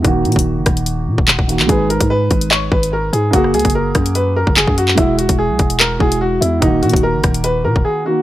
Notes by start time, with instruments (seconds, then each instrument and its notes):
0.02 808-style bass D#1, grand piano D#3 A#3, kick, closed hi-hat
0.07 grand piano F#4
0.25 808-style bass A#2, closed hi-hat
0.32 closed hi-hat
0.36 808-style bass D#1, kick, closed hi-hat
0.57 808-style bass F#1
0.66 808-style bass D#1, kick, cross-stick, closed hi-hat
0.77 closed hi-hat
0.86 closed hi-hat
1.07 808-style bass A#2
1.18 808-style bass D#1, kick
1.28 808-style bass D#1, clap
1.39 808-style bass D#1, kick
1.47 grand piano D#3 A#3 F#4, closed hi-hat
1.59 808-style bass A#1, clap
1.67 808-style bass G#1, grand piano G#3 D#4, upright piano G#4, kick, closed hi-hat
1.71 grand piano B4
1.90 upright piano A#4, closed hi-hat
2.00 808-style bass G#2, kick, closed hi-hat
2.10 upright piano B4
2.31 808-style bass G#1, kick, closed hi-hat
2.41 closed hi-hat
2.51 upright piano C#5, clap
2.72 808-style bass G#1, upright piano B4, kick
2.83 closed hi-hat
2.93 upright piano A#4
3.13 808-style bass G#2, upright piano G#4, closed hi-hat
3.31 808-style bass F#1, grand piano A#3 F#4, upright piano F#4, kick, closed hi-hat
3.35 grand piano G#4
3.44 cross-stick
3.54 808-style bass C#2, upright piano G#4, closed hi-hat
3.59 closed hi-hat
3.65 808-style bass F#1, kick, closed hi-hat
3.70 closed hi-hat
3.75 upright piano A#4
3.95 808-style bass F#2, kick, cross-stick, closed hi-hat
4.06 closed hi-hat
4.15 upright piano B4, closed hi-hat
4.36 upright piano A#4
4.47 808-style bass F#1, kick
4.57 808-style bass F#1, upright piano G#4, clap
4.67 808-style bass F#2, kick
4.78 upright piano F#4, closed hi-hat
4.88 clap
4.95 808-style bass E1, grand piano G#3 E4, upright piano E4, kick, closed hi-hat
5.00 grand piano F#4
5.18 upright piano F#4, closed hi-hat
5.29 808-style bass E1, kick, closed hi-hat
5.39 upright piano G#4
5.50 808-style bass B1
5.59 808-style bass E1, kick, closed hi-hat
5.70 closed hi-hat
5.79 upright piano A#4, clap
5.99 808-style bass E1, grand piano G#3 E4 F#4, upright piano G#4, kick
6.12 closed hi-hat
6.21 upright piano F#4
6.41 808-style bass E2, upright piano E4, closed hi-hat
6.60 808-style bass D#1, grand piano D#3 A#3, upright piano D#4, kick, closed hi-hat
6.64 grand piano F#4
6.82 808-style bass A#2, upright piano F#4, closed hi-hat
6.89 808-style bass D#1, closed hi-hat
6.93 kick, closed hi-hat
7.03 upright piano A#4
7.14 808-style bass F#1
7.24 808-style bass D#1, kick, cross-stick, closed hi-hat
7.34 closed hi-hat
7.44 upright piano B4, closed hi-hat
7.64 808-style bass A#2, upright piano A#4
7.76 808-style bass D#1, kick
7.85 upright piano G#4
8.05 grand piano D#3 A#3 F#4, upright piano F#4